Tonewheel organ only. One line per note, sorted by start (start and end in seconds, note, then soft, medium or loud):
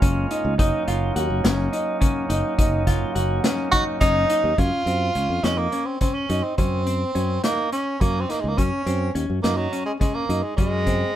0.00 0.54 G#3 medium
0.00 0.54 A#3 medium
0.00 0.55 C#4 medium
0.00 0.55 F4 medium
0.58 4.54 F#3 medium
0.58 4.54 A#3 medium
0.58 4.54 C#4 medium
0.58 4.54 D#4 medium